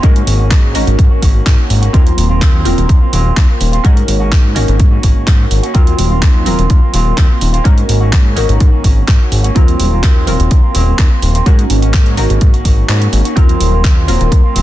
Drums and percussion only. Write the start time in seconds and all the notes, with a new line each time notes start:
0.03 kick, closed hi-hat
0.16 closed hi-hat
0.27 open hi-hat
0.51 kick, clap, closed hi-hat
0.75 open hi-hat
0.87 closed hi-hat
0.99 kick, closed hi-hat
1.22 kick, open hi-hat
1.46 kick, clap, closed hi-hat
1.70 open hi-hat
1.83 closed hi-hat
1.94 kick, closed hi-hat
2.07 closed hi-hat
2.18 open hi-hat
2.42 kick, clap, closed hi-hat
2.65 open hi-hat
2.78 closed hi-hat
2.89 kick, closed hi-hat
3.13 open hi-hat
3.37 kick, clap, closed hi-hat
3.61 open hi-hat
3.73 closed hi-hat
3.85 kick, closed hi-hat
3.97 closed hi-hat
4.08 open hi-hat
4.32 kick, clap, closed hi-hat
4.56 open hi-hat
4.68 closed hi-hat
4.80 kick, closed hi-hat
5.03 kick, open hi-hat
5.27 kick, clap, closed hi-hat
5.51 open hi-hat
5.64 closed hi-hat
5.75 kick, closed hi-hat
5.87 closed hi-hat
5.99 open hi-hat
6.22 kick, clap, closed hi-hat
6.46 open hi-hat
6.59 closed hi-hat
6.70 kick, closed hi-hat
6.94 open hi-hat
7.18 kick, clap, closed hi-hat
7.41 open hi-hat
7.54 closed hi-hat
7.65 kick, closed hi-hat
7.78 closed hi-hat
7.89 open hi-hat
8.13 kick, clap, closed hi-hat
8.37 open hi-hat
8.49 closed hi-hat
8.60 kick, closed hi-hat
8.84 kick, open hi-hat
9.08 kick, clap, closed hi-hat
9.32 open hi-hat
9.44 closed hi-hat
9.56 kick, closed hi-hat
9.68 closed hi-hat
9.80 open hi-hat
10.03 kick, clap, closed hi-hat
10.27 open hi-hat
10.40 closed hi-hat
10.51 kick, closed hi-hat
10.75 open hi-hat
10.99 kick, clap, closed hi-hat
11.22 open hi-hat
11.35 closed hi-hat
11.46 kick, closed hi-hat
11.59 closed hi-hat
11.70 open hi-hat
11.82 closed hi-hat
11.94 kick, clap, closed hi-hat
12.06 closed hi-hat
12.17 open hi-hat
12.30 closed hi-hat
12.41 kick, closed hi-hat
12.54 closed hi-hat
12.65 kick, open hi-hat
12.89 clap, closed hi-hat
13.02 closed hi-hat
13.13 open hi-hat
13.25 closed hi-hat
13.37 kick, closed hi-hat
13.49 closed hi-hat
13.61 open hi-hat
13.84 kick, clap, closed hi-hat
14.08 open hi-hat
14.21 closed hi-hat
14.32 kick, closed hi-hat
14.56 open hi-hat